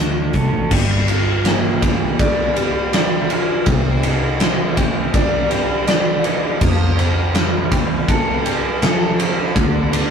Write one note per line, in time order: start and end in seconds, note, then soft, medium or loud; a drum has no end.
0.00 0.31 D2 loud
0.00 0.71 A3 medium
0.00 0.71 D4 medium
0.00 0.72 F#4 medium
0.33 0.51 C2 medium
0.33 0.72 A4 medium
0.33 kick medium
0.33 closed hi-hat medium
0.52 0.69 A1 medium
0.71 2.20 G1 loud
0.71 3.33 G3 medium
0.71 kick loud
0.71 crash loud
1.08 2.93 F4 medium
1.08 ride medium
1.45 3.30 A#3 medium
1.45 snare loud
1.45 ride loud
1.81 2.55 G4 medium
1.81 kick medium
1.81 ride medium
2.19 2.94 D2 loud
2.19 2.92 D5 medium
2.19 kick loud
2.19 ride loud
2.56 4.77 G4 medium
2.56 ride medium
2.93 3.63 G2 loud
2.93 3.67 D5 medium
2.93 snare loud
2.93 ride loud
3.30 3.67 F4 medium
3.30 ride medium
3.66 5.14 C2 loud
3.66 5.51 C3 medium
3.66 kick loud
3.66 ride loud
4.03 5.88 D#4 medium
4.03 ride medium
4.40 6.25 C4 medium
4.40 snare loud
4.40 ride loud
4.77 5.49 G4 medium
4.77 kick medium
4.77 ride medium
5.14 5.88 G2 loud
5.14 5.87 D5 medium
5.14 kick loud
5.14 ride loud
5.50 6.61 G4 medium
5.50 snare soft
5.50 ride medium
5.87 6.57 C3 loud
5.87 6.61 D5 medium
5.87 snare loud
5.87 ride loud
6.24 6.61 D#4 medium
6.24 ride medium
6.61 8.09 F2 loud
6.61 8.45 F3 medium
6.61 kick loud
6.61 crash loud
6.98 8.82 C4 medium
6.98 ride medium
7.34 9.18 G3 medium
7.34 snare loud
7.34 ride loud
7.72 8.44 G4 medium
7.72 kick medium
7.72 ride medium
8.08 8.84 C2 loud
8.08 8.80 A4 medium
8.08 kick loud
8.08 ride loud
8.45 9.55 G4 medium
8.45 ride medium
8.82 9.52 F3 loud
8.82 9.55 A4 medium
8.82 snare loud
8.82 ride loud
9.19 9.56 C4 medium
9.19 ride medium
9.55 10.10 D2 loud
9.55 10.10 D3 medium
9.55 kick loud
9.55 ride loud
9.92 10.10 D4 medium
9.92 snare soft
9.92 ride medium